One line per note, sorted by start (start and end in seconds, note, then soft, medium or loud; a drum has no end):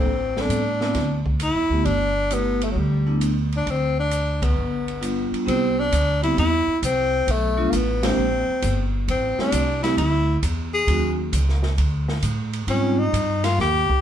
0.00 0.42 C4 medium
0.05 0.47 A1 medium
0.37 0.49 G3 medium
0.37 0.49 B3 medium
0.37 0.49 C4 medium
0.37 0.50 A4 medium
0.37 snare soft
0.41 1.29 D4 medium
0.49 0.92 A2 medium
0.49 hi-hat pedal soft
0.49 ride medium
0.80 0.94 B3 medium
0.80 0.94 C4 medium
0.80 0.94 D4 medium
0.80 0.94 E4 medium
0.80 snare soft
0.94 1.51 D2 medium
0.94 kick soft
0.94 snare soft
0.94 ride medium
1.26 kick soft
1.40 1.87 E4 medium
1.40 hi-hat pedal soft
1.40 ride medium
1.55 1.69 E2 medium
1.70 1.84 D2 medium
1.70 1.84 A3 medium
1.70 1.84 B3 medium
1.70 1.84 E4 medium
1.70 1.84 G4 medium
1.85 2.72 G1 medium
1.85 2.35 D4 medium
1.85 kick soft
1.85 ride medium
2.30 2.58 A3 medium
2.30 2.59 B3 medium
2.30 2.65 B3 medium
2.30 2.58 E4 medium
2.30 2.59 G4 medium
2.30 hi-hat pedal medium
2.30 ride medium
2.61 2.71 A3 medium
2.61 ride medium
2.71 2.80 F#3 soft
2.76 3.62 D2 medium
2.76 3.22 G3 medium
2.76 kick soft
3.07 3.20 A3 medium
3.07 3.20 B3 medium
3.07 3.20 D4 medium
3.07 3.20 E4 medium
3.21 hi-hat pedal soft
3.21 ride medium
3.52 ride soft
3.57 3.72 D4 medium
3.66 4.53 D2 medium
3.66 kick soft
3.66 ride medium
3.70 3.99 C4 medium
4.00 4.45 D4 medium
4.11 hi-hat pedal soft
4.11 ride medium
4.42 5.33 B3 medium
4.42 kick medium
4.42 ride medium
4.56 5.28 G1 medium
4.88 ride soft
5.01 5.45 G3 soft
5.01 5.45 B3 soft
5.01 5.46 D4 medium
5.01 5.47 F4 medium
5.01 hi-hat pedal soft
5.01 ride medium
5.31 muted upright bass stroke soft
5.31 ride soft
5.46 5.91 C2 medium
5.46 5.74 G3 medium
5.46 5.74 B3 medium
5.46 5.75 C4 medium
5.46 5.81 C4 medium
5.46 5.74 E4 medium
5.46 5.75 G4 medium
5.46 kick soft
5.46 ride medium
5.80 6.23 D4 loud
5.92 6.36 D2 medium
5.92 kick soft
5.92 hi-hat pedal medium
5.92 ride medium
6.22 6.36 G3 medium
6.22 6.36 B3 medium
6.22 6.36 C4 medium
6.22 6.36 E4 medium
6.22 6.37 E4 medium
6.22 6.36 G4 medium
6.22 ride soft
6.37 6.66 E2 medium
6.37 6.80 E4 medium
6.37 kick soft
6.37 ride medium
6.67 muted upright bass stroke soft
6.82 7.26 C2 medium
6.82 7.33 C4 medium
6.82 kick soft
6.82 hi-hat pedal medium
6.82 ride medium
7.27 7.71 B1 medium
7.27 kick soft
7.27 ride medium
7.31 7.73 A3 medium
7.57 7.71 F3 medium
7.57 7.71 A3 medium
7.57 7.71 B3 medium
7.57 7.70 D4 medium
7.57 7.71 F4 medium
7.71 8.16 A1 medium
7.71 7.77 A#3 medium
7.71 kick soft
7.71 hi-hat pedal medium
7.71 ride medium
7.76 8.07 B3 medium
8.03 8.16 G#3 medium
8.03 8.16 A#3 medium
8.03 8.16 C4 medium
8.03 8.94 C4 medium
8.03 8.16 D4 medium
8.03 8.16 G4 medium
8.03 snare medium
8.03 ride medium
8.17 8.46 A#1 medium
8.49 muted upright bass stroke soft
8.62 9.06 G1 medium
8.62 kick soft
8.62 hi-hat pedal medium
8.62 ride medium
9.08 9.36 A1 medium
9.08 9.38 C4 medium
9.08 kick soft
9.08 ride medium
9.38 9.51 G3 medium
9.38 9.52 A3 medium
9.38 9.51 C4 medium
9.38 9.82 D4 loud
9.38 9.51 E4 medium
9.38 9.52 G4 medium
9.38 muted upright bass stroke soft
9.38 snare soft
9.52 9.96 C2 medium
9.52 kick soft
9.52 hi-hat pedal medium
9.52 ride medium
9.82 9.96 G3 medium
9.82 9.96 A3 medium
9.82 9.96 C4 medium
9.82 9.96 E4 medium
9.82 9.97 E4 medium
9.82 9.96 G4 medium
9.82 snare soft
9.82 ride soft
9.97 10.41 D2 medium
9.97 10.40 E4 medium
9.97 kick soft
9.97 ride medium
10.43 10.86 E2 medium
10.43 kick soft
10.43 hi-hat pedal medium
10.43 ride medium
10.74 11.16 G#4 loud
10.87 11.31 D#2 medium
10.87 11.16 F#3 medium
10.87 11.15 A#3 medium
10.87 11.16 C#4 medium
10.87 11.15 D#4 medium
10.87 11.16 F#4 medium
10.87 kick soft
10.87 ride medium
11.32 11.76 C#2 medium
11.32 kick soft
11.32 hi-hat pedal medium
11.32 ride medium
11.49 snare soft
11.63 snare soft
11.78 12.21 D2 medium
11.78 kick soft
11.78 ride medium
12.08 snare soft
12.22 12.66 A2 medium
12.22 kick soft
12.22 hi-hat pedal medium
12.22 ride medium
12.53 ride soft
12.67 13.11 G#2 medium
12.67 12.96 G3 medium
12.67 12.96 C4 medium
12.67 12.96 C#4 medium
12.67 13.00 C#4 medium
12.67 12.96 D#4 medium
12.67 12.96 F4 medium
12.67 kick soft
12.67 ride medium
12.99 13.46 D#4 medium
13.13 13.57 G2 medium
13.13 kick soft
13.13 hi-hat pedal soft
13.13 ride medium
13.44 13.59 F4 medium
13.44 snare soft
13.44 ride medium
13.58 13.87 D#2 medium
13.58 14.01 G4 loud
13.58 kick soft
13.58 snare soft
13.89 muted upright bass stroke soft
13.89 kick medium